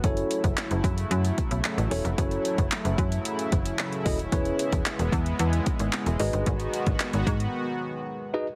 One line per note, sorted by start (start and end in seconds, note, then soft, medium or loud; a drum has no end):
0.04 0.24 F#1 loud
0.04 6.16 C#3 medium
0.04 4.28 F#3 medium
0.04 4.28 A3 medium
0.04 0.53 C#4 medium
0.04 6.16 E4 medium
0.04 0.53 E4 medium
0.04 0.53 F#4 medium
0.04 0.53 A4 medium
0.04 0.53 C#5 loud
0.04 kick loud
0.04 closed hi-hat medium
0.17 closed hi-hat soft
0.31 closed hi-hat medium
0.44 0.54 F#1 loud
0.44 kick loud
0.44 closed hi-hat medium
0.57 clap loud
0.57 closed hi-hat medium
0.71 0.81 F#1 loud
0.71 closed hi-hat medium
0.84 1.05 F#2 loud
0.84 kick loud
0.84 closed hi-hat medium
0.98 closed hi-hat soft
1.11 1.31 F#2 loud
1.11 closed hi-hat loud
1.25 closed hi-hat medium
1.38 kick medium
1.38 closed hi-hat medium
1.51 1.61 B1 loud
1.51 closed hi-hat medium
1.64 clap loud
1.64 closed hi-hat medium
1.78 1.88 A1 medium
1.78 closed hi-hat medium
1.91 2.02 E1 medium
1.91 2.03 C#4 medium
1.91 2.03 E4 medium
1.91 2.03 F#4 medium
1.91 2.04 A4 medium
1.91 2.04 C#5 loud
1.91 open hi-hat medium
2.05 2.15 F1 medium
2.05 closed hi-hat soft
2.18 2.39 F#1 loud
2.18 2.67 C#4 medium
2.18 2.67 E4 medium
2.18 2.67 F#4 medium
2.18 2.67 A4 medium
2.18 2.67 C#5 loud
2.18 kick loud
2.18 closed hi-hat medium
2.31 closed hi-hat soft
2.45 closed hi-hat medium
2.58 2.69 F#1 loud
2.58 kick loud
2.58 closed hi-hat medium
2.72 clap loud
2.72 closed hi-hat loud
2.85 2.95 F#1 loud
2.85 closed hi-hat medium
2.98 3.19 F#2 loud
2.98 kick loud
2.98 closed hi-hat medium
3.12 closed hi-hat soft
3.25 closed hi-hat loud
3.39 closed hi-hat medium
3.52 3.73 F#1 medium
3.52 kick loud
3.52 closed hi-hat medium
3.65 closed hi-hat medium
3.79 clap loud
3.79 closed hi-hat medium
3.93 closed hi-hat medium
4.05 4.26 D#1 loud
4.05 4.18 C#4 medium
4.05 4.18 E4 medium
4.05 4.18 F#4 medium
4.05 4.18 A4 medium
4.05 4.18 D#5 loud
4.05 kick loud
4.05 open hi-hat medium
4.19 closed hi-hat soft
4.32 4.53 E1 loud
4.32 8.55 G#3 medium
4.32 6.18 B3 medium
4.32 4.81 C#4 loud
4.32 4.81 E4 medium
4.32 4.81 G#4 medium
4.32 4.81 B4 medium
4.32 4.81 C#5 loud
4.32 kick loud
4.32 closed hi-hat medium
4.45 closed hi-hat soft
4.59 closed hi-hat medium
4.72 4.83 E1 loud
4.72 kick medium
4.72 closed hi-hat medium
4.86 clap loud
4.86 closed hi-hat loud
4.99 5.10 E1 loud
4.99 closed hi-hat medium
5.12 5.33 E2 loud
5.12 kick loud
5.12 closed hi-hat medium
5.26 closed hi-hat soft
5.39 5.60 E2 loud
5.39 closed hi-hat loud
5.53 closed hi-hat medium
5.66 kick loud
5.66 closed hi-hat medium
5.79 5.90 G#1 medium
5.79 closed hi-hat medium
5.93 clap loud
5.93 closed hi-hat medium
6.06 6.17 E1 medium
6.06 closed hi-hat medium
6.19 6.30 G#1 loud
6.19 8.55 D#3 medium
6.19 8.55 B3 medium
6.19 7.05 D#4 loud
6.19 7.05 F#4 medium
6.19 8.55 F#4 loud
6.19 7.05 G#4 medium
6.19 7.06 B4 medium
6.19 7.06 D#5 loud
6.19 open hi-hat medium
6.33 6.44 G1 loud
6.33 closed hi-hat soft
6.46 6.67 G#1 loud
6.46 kick loud
6.46 closed hi-hat medium
6.60 closed hi-hat soft
6.73 closed hi-hat medium
6.87 6.97 G#1 loud
6.87 kick loud
6.87 closed hi-hat medium
7.00 clap loud
7.00 closed hi-hat loud
7.13 7.24 G#1 loud
7.13 closed hi-hat medium
7.27 7.47 G#2 loud
7.27 kick loud
7.27 closed hi-hat medium
7.40 closed hi-hat soft
8.34 8.46 D#4 medium
8.34 8.46 F#4 medium
8.34 8.46 G#4 medium
8.34 8.46 B4 medium
8.34 8.46 D#5 loud